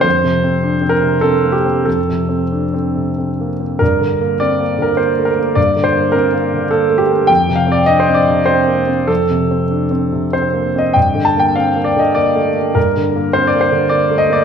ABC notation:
X:1
M:3/4
L:1/16
Q:1/4=101
K:Gm
V:1 name="Grand piano"
c6 B2 A2 G2 | A8- A2 z2 | B4 d3 B c2 B2 | d2 c2 B4 A2 G2 |
g2 f d e c d2 c4 | A8 c3 e | g2 a g f2 d e d4 | B4 c d c2 d2 e d |]
V:2 name="Grand piano"
(3F,,2 C,2 C2 (3D2 C2 C,2 (3C2 B,2 C2 | (3F,,2 C,2 C2 (3D2 C2 C,2 (3C2 B,2 C2 | (3G,,2 D,2 B,2 (3C2 B,2 D,2 (3B,2 A,2 B,2 | (3G,,2 D,2 B,2 (3C2 B,2 D,2 (3B,2 A,2 B,2 |
(3F,,2 C,2 C2 (3D2 C2 C,2 (3C2 B,2 C2 | (3F,,2 C,2 C2 (3D2 C2 C,2 (3C2 B,2 C2 | (3G,,2 D,2 B,2 (3C2 B,2 D,2 (3B,2 A,2 B,2 | (3G,,2 D,2 B,2 (3C2 B,2 D,2 (3B,2 A,2 B,2 |]